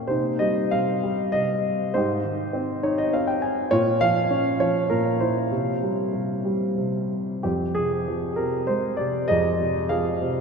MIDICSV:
0, 0, Header, 1, 2, 480
1, 0, Start_track
1, 0, Tempo, 623053
1, 69, Time_signature, 3, 2, 24, 8
1, 1506, Tempo, 594059
1, 4386, Tempo, 637620
1, 6306, Tempo, 611621
1, 8141, End_track
2, 0, Start_track
2, 0, Title_t, "Grand piano"
2, 0, Program_c, 0, 0
2, 0, Control_c, 0, 64, 127
2, 0, Note_on_c, 0, 46, 61
2, 0, Note_on_c, 0, 53, 49
2, 0, Note_on_c, 0, 58, 48
2, 0, Note_on_c, 0, 61, 53
2, 0, Note_on_c, 0, 73, 63
2, 0, Note_on_c, 0, 77, 89
2, 57, Note_on_c, 0, 72, 70
2, 58, Note_on_c, 0, 48, 49
2, 78, Note_on_c, 0, 63, 54
2, 79, Control_c, 0, 64, 0
2, 80, Note_off_c, 0, 53, 0
2, 81, Note_off_c, 0, 61, 0
2, 81, Note_off_c, 0, 73, 0
2, 82, Note_off_c, 0, 58, 0
2, 82, Note_off_c, 0, 77, 0
2, 83, Note_off_c, 0, 46, 0
2, 231, Control_c, 0, 64, 127
2, 294, Note_off_c, 0, 72, 0
2, 301, Note_on_c, 0, 75, 78
2, 309, Note_on_c, 0, 55, 43
2, 536, Note_off_c, 0, 75, 0
2, 550, Note_off_c, 0, 48, 0
2, 550, Note_on_c, 0, 77, 86
2, 561, Note_on_c, 0, 48, 43
2, 776, Note_off_c, 0, 63, 0
2, 783, Note_off_c, 0, 55, 0
2, 795, Note_on_c, 0, 55, 54
2, 1018, Note_on_c, 0, 75, 82
2, 1019, Note_off_c, 0, 48, 0
2, 1031, Note_on_c, 0, 48, 53
2, 1049, Note_off_c, 0, 77, 0
2, 1481, Note_off_c, 0, 55, 0
2, 1487, Note_off_c, 0, 48, 0
2, 1493, Note_on_c, 0, 72, 83
2, 1501, Note_on_c, 0, 44, 62
2, 1510, Note_off_c, 0, 75, 0
2, 1517, Control_c, 0, 64, 0
2, 1519, Note_on_c, 0, 67, 53
2, 1680, Control_c, 0, 64, 127
2, 1737, Note_on_c, 0, 51, 47
2, 1973, Note_on_c, 0, 60, 54
2, 2216, Note_on_c, 0, 63, 59
2, 2216, Note_on_c, 0, 73, 72
2, 2328, Note_off_c, 0, 73, 0
2, 2336, Note_on_c, 0, 75, 69
2, 2418, Note_off_c, 0, 72, 0
2, 2431, Note_off_c, 0, 67, 0
2, 2445, Note_off_c, 0, 60, 0
2, 2448, Note_off_c, 0, 75, 0
2, 2458, Note_on_c, 0, 60, 58
2, 2458, Note_on_c, 0, 77, 71
2, 2569, Note_off_c, 0, 77, 0
2, 2572, Note_on_c, 0, 79, 67
2, 2663, Note_off_c, 0, 51, 0
2, 2685, Note_off_c, 0, 79, 0
2, 2689, Note_on_c, 0, 80, 66
2, 2898, Note_off_c, 0, 44, 0
2, 2910, Note_off_c, 0, 63, 0
2, 2913, Note_off_c, 0, 80, 0
2, 2919, Note_off_c, 0, 60, 0
2, 2923, Note_on_c, 0, 73, 99
2, 2927, Note_on_c, 0, 46, 60
2, 2942, Note_on_c, 0, 65, 73
2, 2944, Control_c, 0, 64, 0
2, 3090, Control_c, 0, 64, 127
2, 3165, Note_on_c, 0, 53, 54
2, 3165, Note_on_c, 0, 77, 113
2, 3173, Note_off_c, 0, 73, 0
2, 3405, Note_on_c, 0, 61, 55
2, 3625, Note_off_c, 0, 65, 0
2, 3634, Note_off_c, 0, 53, 0
2, 3644, Note_on_c, 0, 73, 91
2, 3646, Note_on_c, 0, 53, 54
2, 3664, Note_off_c, 0, 77, 0
2, 3881, Note_off_c, 0, 46, 0
2, 3883, Note_on_c, 0, 70, 77
2, 3893, Note_on_c, 0, 46, 57
2, 3896, Note_off_c, 0, 73, 0
2, 4114, Note_off_c, 0, 70, 0
2, 4128, Note_on_c, 0, 72, 71
2, 4139, Note_on_c, 0, 64, 51
2, 4354, Note_off_c, 0, 61, 0
2, 4361, Note_off_c, 0, 53, 0
2, 4372, Note_off_c, 0, 46, 0
2, 4381, Note_on_c, 0, 48, 55
2, 4395, Control_c, 0, 64, 0
2, 4527, Control_c, 0, 64, 127
2, 4618, Note_on_c, 0, 55, 44
2, 4837, Note_off_c, 0, 48, 0
2, 4849, Note_on_c, 0, 48, 47
2, 5075, Note_off_c, 0, 55, 0
2, 5086, Note_on_c, 0, 55, 47
2, 5321, Note_off_c, 0, 48, 0
2, 5333, Note_on_c, 0, 48, 47
2, 5556, Note_off_c, 0, 72, 0
2, 5561, Note_off_c, 0, 64, 0
2, 5809, Note_off_c, 0, 55, 0
2, 5816, Note_off_c, 0, 48, 0
2, 5826, Note_on_c, 0, 67, 63
2, 5830, Note_on_c, 0, 41, 48
2, 5836, Note_on_c, 0, 60, 45
2, 5844, Control_c, 0, 64, 0
2, 5972, Control_c, 0, 64, 127
2, 6051, Note_off_c, 0, 67, 0
2, 6062, Note_on_c, 0, 68, 77
2, 6071, Note_on_c, 0, 48, 41
2, 6311, Note_on_c, 0, 53, 44
2, 6519, Note_off_c, 0, 60, 0
2, 6536, Note_on_c, 0, 70, 72
2, 6543, Note_off_c, 0, 48, 0
2, 6555, Note_on_c, 0, 48, 46
2, 6559, Note_off_c, 0, 68, 0
2, 6765, Note_off_c, 0, 70, 0
2, 6776, Note_on_c, 0, 72, 75
2, 6794, Note_on_c, 0, 56, 46
2, 7004, Note_off_c, 0, 72, 0
2, 7010, Note_on_c, 0, 74, 75
2, 7018, Note_off_c, 0, 48, 0
2, 7030, Note_on_c, 0, 48, 42
2, 7233, Note_off_c, 0, 41, 0
2, 7240, Note_off_c, 0, 53, 0
2, 7240, Note_off_c, 0, 74, 0
2, 7254, Note_on_c, 0, 75, 88
2, 7259, Note_on_c, 0, 68, 63
2, 7270, Note_on_c, 0, 41, 51
2, 7495, Note_off_c, 0, 48, 0
2, 7506, Note_on_c, 0, 48, 47
2, 7711, Note_off_c, 0, 75, 0
2, 7722, Note_off_c, 0, 56, 0
2, 7733, Note_off_c, 0, 68, 0
2, 7736, Note_on_c, 0, 77, 80
2, 7745, Note_on_c, 0, 53, 48
2, 7745, Note_on_c, 0, 68, 58
2, 7980, Note_off_c, 0, 48, 0
2, 7992, Note_on_c, 0, 48, 47
2, 8141, Note_off_c, 0, 41, 0
2, 8141, Note_off_c, 0, 48, 0
2, 8141, Note_off_c, 0, 53, 0
2, 8141, Note_off_c, 0, 68, 0
2, 8141, Note_off_c, 0, 77, 0
2, 8141, End_track
0, 0, End_of_file